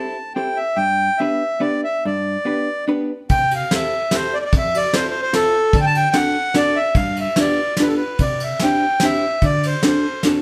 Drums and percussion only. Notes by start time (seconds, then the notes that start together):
3.29 kick, ride
3.51 ride
3.71 snare, ride
4.11 snare, ride
4.52 kick, ride
4.74 ride
4.93 snare, ride
5.33 snare, ride
5.73 kick, ride
5.95 ride
6.13 snare, ride
6.54 snare, ride
6.95 kick, ride
7.16 ride
7.36 snare, ride
7.77 snare, ride
8.19 kick, ride
8.40 ride
8.60 snare, ride
9.00 snare, ride
9.42 kick, ride
9.63 ride
9.83 snare, ride
10.23 snare, ride